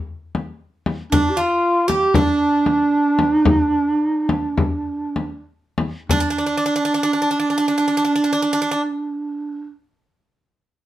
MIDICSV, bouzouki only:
0, 0, Header, 1, 2, 480
1, 0, Start_track
1, 0, Tempo, 517241
1, 1038, Time_signature, 9, 3, 24, 8
1, 2967, Tempo, 558659
1, 4407, Tempo, 612245
1, 5367, Tempo, 641026
1, 8929, End_track
2, 0, Start_track
2, 0, Title_t, "Bouzouki"
2, 0, Program_c, 0, 25
2, 1042, Note_on_c, 0, 62, 75
2, 1270, Note_on_c, 0, 65, 65
2, 1285, Note_off_c, 0, 62, 0
2, 1741, Note_off_c, 0, 65, 0
2, 1745, Note_on_c, 0, 67, 73
2, 1995, Note_off_c, 0, 67, 0
2, 1999, Note_on_c, 0, 62, 54
2, 4848, Note_off_c, 0, 62, 0
2, 5374, Note_on_c, 0, 62, 87
2, 5436, Note_off_c, 0, 62, 0
2, 5446, Note_on_c, 0, 62, 62
2, 5507, Note_off_c, 0, 62, 0
2, 5522, Note_on_c, 0, 62, 57
2, 5573, Note_off_c, 0, 62, 0
2, 5582, Note_on_c, 0, 62, 48
2, 5633, Note_off_c, 0, 62, 0
2, 5642, Note_on_c, 0, 62, 50
2, 5710, Note_off_c, 0, 62, 0
2, 5724, Note_on_c, 0, 62, 52
2, 5778, Note_off_c, 0, 62, 0
2, 5787, Note_on_c, 0, 62, 62
2, 5853, Note_off_c, 0, 62, 0
2, 5861, Note_on_c, 0, 62, 56
2, 5921, Note_off_c, 0, 62, 0
2, 5930, Note_on_c, 0, 62, 62
2, 5991, Note_off_c, 0, 62, 0
2, 6000, Note_on_c, 0, 62, 52
2, 6058, Note_off_c, 0, 62, 0
2, 6067, Note_on_c, 0, 62, 65
2, 6133, Note_off_c, 0, 62, 0
2, 6142, Note_on_c, 0, 62, 50
2, 6197, Note_off_c, 0, 62, 0
2, 6206, Note_on_c, 0, 62, 57
2, 6264, Note_off_c, 0, 62, 0
2, 6273, Note_on_c, 0, 62, 47
2, 6330, Note_off_c, 0, 62, 0
2, 6339, Note_on_c, 0, 62, 55
2, 6409, Note_off_c, 0, 62, 0
2, 6417, Note_on_c, 0, 62, 43
2, 6466, Note_off_c, 0, 62, 0
2, 6475, Note_on_c, 0, 62, 60
2, 6543, Note_off_c, 0, 62, 0
2, 6552, Note_on_c, 0, 62, 51
2, 6616, Note_off_c, 0, 62, 0
2, 6625, Note_on_c, 0, 62, 57
2, 6691, Note_off_c, 0, 62, 0
2, 6700, Note_on_c, 0, 62, 47
2, 6761, Note_off_c, 0, 62, 0
2, 6770, Note_on_c, 0, 62, 60
2, 6817, Note_off_c, 0, 62, 0
2, 6826, Note_on_c, 0, 62, 48
2, 6898, Note_off_c, 0, 62, 0
2, 6908, Note_on_c, 0, 62, 57
2, 6961, Note_off_c, 0, 62, 0
2, 6970, Note_on_c, 0, 62, 50
2, 7027, Note_off_c, 0, 62, 0
2, 7036, Note_on_c, 0, 62, 61
2, 7100, Note_off_c, 0, 62, 0
2, 7109, Note_on_c, 0, 62, 55
2, 7180, Note_off_c, 0, 62, 0
2, 7188, Note_on_c, 0, 62, 66
2, 7244, Note_off_c, 0, 62, 0
2, 7253, Note_on_c, 0, 62, 53
2, 7318, Note_off_c, 0, 62, 0
2, 7327, Note_on_c, 0, 62, 59
2, 7395, Note_off_c, 0, 62, 0
2, 8929, End_track
0, 0, End_of_file